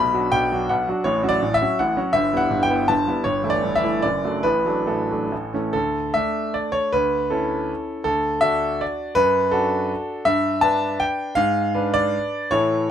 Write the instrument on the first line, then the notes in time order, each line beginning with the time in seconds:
grand piano
Already playing: B1 B2 B5
0.13 F#3 D4 F#4
0.32 B1 B2 G5
0.52 F#3 D4 F#4
0.69 B1 B2 F#5
0.88 F#3 D4 F#4
1.04 A1 A2 C#5
1.23 F#3 C#4 F#4
1.29 D5
1.42 A1 A2
1.54 E5
1.62 F#3 C#4 F#4
1.79 A1 A2 F#5
1.97 F#3 C#4 F#4
2.13 G1 G2 E5
2.33 G3 B3 E4
2.37 F#5
2.50 G1 G2
2.63 G5
2.70 G3 B3 E4
2.88 G1 G2 A5
3.07 G3 B3 E4
3.24 G1 G2 C#5
3.43 E3 A3 E4
3.50 D5
3.63 G1 G2
3.75 E5
3.84 E3 A3 E4
4.02 F#1 F#2 D5
4.25 F#3 A3 D4
4.43 A1 A2 B4
4.66 F#3 A3 D4
4.87 A1 A2 A4
5.10 F#3 A3 D4
5.32 A1 A2
5.54 E3 A3 C#4
5.73 D2 A4
6.14 A3 D4 E5
6.54 D5
6.72 C#5
6.93 D2 B4
7.30 C#4 E4 A4
8.04 D2 A4
8.41 D4 F#4 E5
8.81 D5
9.15 F#2 B4
9.51 D4 F#4 A4
10.25 G2 E5
10.61 D4 B4 A5
11.00 G5
11.35 G#2 F5
11.75 D4 B4
11.94 D5
12.51 A2 E3 E4 A4 C#5